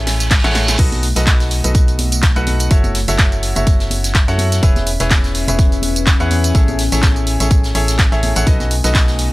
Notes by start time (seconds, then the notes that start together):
Already playing: A1 A3 C#4 E4 G#4 A4 C#5 E5 G#5, reverse cymbal
0.07 snare, open hi-hat
0.20 snare, closed hi-hat, tambourine
0.31 kick, snare, clap, closed hi-hat, open hi-hat, tambourine
0.38 snare, open hi-hat
0.44 A1 E4 G#4 A4 C#5 F#5, snare, closed hi-hat, open hi-hat, tambourine
0.49 snare, open hi-hat
0.55 snare, closed hi-hat, open hi-hat
0.68 snare, closed hi-hat, tambourine
0.78 B1 B3 D#4 F#4 A4 B4 D#5, kick, closed hi-hat, crash, tambourine
0.92 snare, closed hi-hat, tambourine, high conga
1.03 closed hi-hat, open hi-hat
1.16 B1 D#4 F#4 A4 B4 D#5, snare, closed hi-hat, tambourine
1.27 kick, snare, clap, closed hi-hat, open hi-hat, tambourine, high conga
1.40 snare, closed hi-hat, tambourine
1.50 snare, closed hi-hat, open hi-hat
1.64 B1 D#4 F#4 A4 B4 D#5 F#5, closed hi-hat, tambourine, high conga
1.74 kick, closed hi-hat, tambourine
1.88 closed hi-hat, tambourine
1.99 closed hi-hat, open hi-hat, high conga
2.12 closed hi-hat, tambourine
2.22 kick, snare, clap, closed hi-hat, tambourine
2.36 B1 D#4 F#4 A4 B4 F#5, closed hi-hat, tambourine
2.47 closed hi-hat, open hi-hat, high conga
2.59 closed hi-hat, tambourine
2.71 F#1 C#4 E4 F#4 A4 C#5 E5, kick, closed hi-hat, tambourine
2.84 closed hi-hat, tambourine, high conga
2.94 snare, closed hi-hat, open hi-hat
3.08 F#1 E4 F#4 A4 C#5 E5, snare, closed hi-hat, tambourine
3.18 kick, snare, clap, closed hi-hat, tambourine, high conga
3.32 closed hi-hat, tambourine
3.42 E5, closed hi-hat, open hi-hat
3.55 F#1 E4 F#4 A4 C#5 E5, closed hi-hat, tambourine, high conga
3.67 kick, closed hi-hat, tambourine
3.80 snare, closed hi-hat, tambourine
3.91 closed hi-hat, open hi-hat, high conga
4.04 snare, closed hi-hat, tambourine
4.15 kick, snare, clap, closed hi-hat, tambourine
4.28 F#2 E4 F#4 A4 C#5 F#5, snare, closed hi-hat, tambourine
4.38 closed hi-hat, open hi-hat, high conga
4.52 snare, closed hi-hat, tambourine
4.62 E1 E4 G#4 B4 C#5 E5, kick, closed hi-hat, tambourine
4.72 B4
4.76 snare, closed hi-hat, tambourine, high conga
4.86 closed hi-hat, open hi-hat
5.00 E1 E4 G#4 B4 C#5 E5, snare, closed hi-hat, tambourine
5.10 kick, snare, clap, closed hi-hat, tambourine, high conga
5.24 snare, closed hi-hat, tambourine
5.35 snare, closed hi-hat, open hi-hat
5.48 E1 E4 G#4 B4 C#5 E5 G#5, closed hi-hat, tambourine, high conga
5.59 kick, closed hi-hat, tambourine
5.72 closed hi-hat, tambourine
5.82 closed hi-hat, open hi-hat, high conga
5.96 closed hi-hat, tambourine
6.06 kick, snare, clap, closed hi-hat, tambourine
6.20 E2 E4 G#4 B4 C#5 F#5, closed hi-hat, tambourine
6.31 closed hi-hat, open hi-hat, high conga
6.44 closed hi-hat, tambourine
6.55 A1 E4 G#4 A4 C#5 E5, kick, closed hi-hat, tambourine
6.68 closed hi-hat, tambourine, high conga
6.79 snare, closed hi-hat, open hi-hat
6.92 A1 E4 G#4 A4 C#5 E5, snare, closed hi-hat, tambourine
7.02 kick, snare, clap, closed hi-hat, tambourine, high conga
7.10 A3
7.16 closed hi-hat, tambourine
7.27 closed hi-hat, open hi-hat
7.40 A1 E4 G#4 A4 C#5 E5, snare, closed hi-hat, tambourine, high conga
7.50 kick, closed hi-hat, tambourine
7.63 snare, closed hi-hat, tambourine
7.75 A1 E4 G#4 A4 C#5 E5, closed hi-hat, open hi-hat, high conga
7.88 snare, closed hi-hat, tambourine
7.99 kick, snare, clap, closed hi-hat, tambourine
8.12 A1 E4 G#4 A4 C#5 E5, snare, closed hi-hat, tambourine
8.23 closed hi-hat, open hi-hat, high conga
8.35 A1 E4 G#4 A4 C#5 F#5, closed hi-hat, tambourine
8.46 B1 B3 D#4 F#4 A4 B4 D#5, kick, closed hi-hat, tambourine
8.60 snare, closed hi-hat, tambourine, high conga
8.71 closed hi-hat, open hi-hat
8.84 B1 D#4 F#4 A4 B4 D#5, snare, closed hi-hat, tambourine
8.91 D#5
8.95 kick, snare, clap, closed hi-hat, open hi-hat, tambourine, high conga
9.08 snare, closed hi-hat, tambourine
9.18 snare, closed hi-hat, open hi-hat